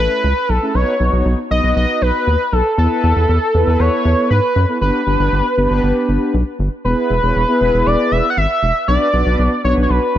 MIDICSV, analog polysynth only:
0, 0, Header, 1, 2, 480
1, 0, Start_track
1, 0, Tempo, 508475
1, 703, Time_signature, 4, 2, 24, 8
1, 9612, End_track
2, 0, Start_track
2, 0, Title_t, "Analog polysynth"
2, 0, Program_c, 0, 90
2, 0, Note_on_c, 0, 57, 78
2, 0, Note_on_c, 0, 61, 69
2, 0, Note_on_c, 0, 64, 74
2, 0, Note_on_c, 0, 69, 85
2, 242, Note_off_c, 0, 57, 0
2, 242, Note_off_c, 0, 61, 0
2, 242, Note_off_c, 0, 64, 0
2, 242, Note_off_c, 0, 69, 0
2, 583, Note_on_c, 0, 57, 75
2, 583, Note_on_c, 0, 61, 70
2, 583, Note_on_c, 0, 64, 73
2, 583, Note_on_c, 0, 68, 84
2, 675, Note_off_c, 0, 57, 0
2, 675, Note_off_c, 0, 61, 0
2, 675, Note_off_c, 0, 64, 0
2, 676, Note_off_c, 0, 68, 0
2, 703, Note_on_c, 0, 59, 77
2, 703, Note_on_c, 0, 63, 72
2, 703, Note_on_c, 0, 66, 73
2, 703, Note_on_c, 0, 71, 86
2, 888, Note_off_c, 0, 59, 0
2, 888, Note_off_c, 0, 63, 0
2, 888, Note_off_c, 0, 66, 0
2, 888, Note_off_c, 0, 71, 0
2, 943, Note_on_c, 0, 59, 75
2, 943, Note_on_c, 0, 63, 67
2, 943, Note_on_c, 0, 66, 68
2, 943, Note_on_c, 0, 73, 83
2, 1312, Note_off_c, 0, 66, 0
2, 1312, Note_off_c, 0, 73, 0
2, 1313, Note_off_c, 0, 59, 0
2, 1313, Note_off_c, 0, 63, 0
2, 1422, Note_on_c, 0, 59, 79
2, 1422, Note_on_c, 0, 63, 71
2, 1423, Note_on_c, 0, 66, 71
2, 1423, Note_on_c, 0, 71, 86
2, 2162, Note_off_c, 0, 59, 0
2, 2162, Note_off_c, 0, 63, 0
2, 2162, Note_off_c, 0, 66, 0
2, 2162, Note_off_c, 0, 71, 0
2, 2622, Note_on_c, 0, 59, 78
2, 2622, Note_on_c, 0, 64, 73
2, 2622, Note_on_c, 0, 69, 70
2, 2622, Note_on_c, 0, 71, 88
2, 3177, Note_off_c, 0, 59, 0
2, 3177, Note_off_c, 0, 64, 0
2, 3177, Note_off_c, 0, 69, 0
2, 3177, Note_off_c, 0, 71, 0
2, 3342, Note_on_c, 0, 64, 84
2, 3342, Note_on_c, 0, 69, 87
2, 3342, Note_on_c, 0, 71, 101
2, 3343, Note_on_c, 0, 59, 91
2, 4082, Note_off_c, 0, 59, 0
2, 4082, Note_off_c, 0, 64, 0
2, 4082, Note_off_c, 0, 69, 0
2, 4082, Note_off_c, 0, 71, 0
2, 4420, Note_on_c, 0, 59, 78
2, 4421, Note_on_c, 0, 64, 69
2, 4421, Note_on_c, 0, 69, 73
2, 4421, Note_on_c, 0, 71, 83
2, 4514, Note_off_c, 0, 59, 0
2, 4514, Note_off_c, 0, 64, 0
2, 4514, Note_off_c, 0, 69, 0
2, 4514, Note_off_c, 0, 71, 0
2, 4542, Note_on_c, 0, 59, 80
2, 4542, Note_on_c, 0, 62, 76
2, 4542, Note_on_c, 0, 67, 72
2, 4542, Note_on_c, 0, 71, 88
2, 4727, Note_off_c, 0, 59, 0
2, 4727, Note_off_c, 0, 62, 0
2, 4727, Note_off_c, 0, 67, 0
2, 4727, Note_off_c, 0, 71, 0
2, 4782, Note_on_c, 0, 59, 77
2, 4782, Note_on_c, 0, 62, 70
2, 4782, Note_on_c, 0, 67, 70
2, 4782, Note_on_c, 0, 71, 87
2, 5152, Note_off_c, 0, 59, 0
2, 5152, Note_off_c, 0, 62, 0
2, 5152, Note_off_c, 0, 67, 0
2, 5152, Note_off_c, 0, 71, 0
2, 5261, Note_on_c, 0, 59, 93
2, 5261, Note_on_c, 0, 67, 83
2, 5262, Note_on_c, 0, 62, 82
2, 5262, Note_on_c, 0, 71, 103
2, 6001, Note_off_c, 0, 59, 0
2, 6001, Note_off_c, 0, 62, 0
2, 6001, Note_off_c, 0, 67, 0
2, 6001, Note_off_c, 0, 71, 0
2, 6461, Note_on_c, 0, 59, 82
2, 6461, Note_on_c, 0, 64, 75
2, 6461, Note_on_c, 0, 68, 73
2, 6461, Note_on_c, 0, 71, 88
2, 6739, Note_off_c, 0, 59, 0
2, 6739, Note_off_c, 0, 64, 0
2, 6739, Note_off_c, 0, 68, 0
2, 6739, Note_off_c, 0, 71, 0
2, 6822, Note_on_c, 0, 59, 74
2, 6822, Note_on_c, 0, 64, 68
2, 6822, Note_on_c, 0, 68, 68
2, 6822, Note_on_c, 0, 73, 83
2, 7007, Note_off_c, 0, 59, 0
2, 7007, Note_off_c, 0, 64, 0
2, 7007, Note_off_c, 0, 68, 0
2, 7007, Note_off_c, 0, 73, 0
2, 7062, Note_on_c, 0, 59, 94
2, 7062, Note_on_c, 0, 64, 83
2, 7062, Note_on_c, 0, 68, 86
2, 7062, Note_on_c, 0, 71, 102
2, 7802, Note_off_c, 0, 59, 0
2, 7802, Note_off_c, 0, 64, 0
2, 7802, Note_off_c, 0, 68, 0
2, 7802, Note_off_c, 0, 71, 0
2, 8383, Note_on_c, 0, 59, 80
2, 8383, Note_on_c, 0, 62, 73
2, 8383, Note_on_c, 0, 66, 73
2, 8383, Note_on_c, 0, 71, 88
2, 8568, Note_off_c, 0, 59, 0
2, 8568, Note_off_c, 0, 62, 0
2, 8568, Note_off_c, 0, 66, 0
2, 8568, Note_off_c, 0, 71, 0
2, 8623, Note_on_c, 0, 59, 80
2, 8623, Note_on_c, 0, 62, 71
2, 8623, Note_on_c, 0, 66, 70
2, 8623, Note_on_c, 0, 71, 85
2, 8993, Note_off_c, 0, 59, 0
2, 8993, Note_off_c, 0, 62, 0
2, 8993, Note_off_c, 0, 66, 0
2, 8993, Note_off_c, 0, 71, 0
2, 9103, Note_on_c, 0, 59, 80
2, 9103, Note_on_c, 0, 62, 72
2, 9103, Note_on_c, 0, 66, 74
2, 9103, Note_on_c, 0, 71, 88
2, 9612, Note_off_c, 0, 59, 0
2, 9612, Note_off_c, 0, 62, 0
2, 9612, Note_off_c, 0, 66, 0
2, 9612, Note_off_c, 0, 71, 0
2, 9612, End_track
0, 0, End_of_file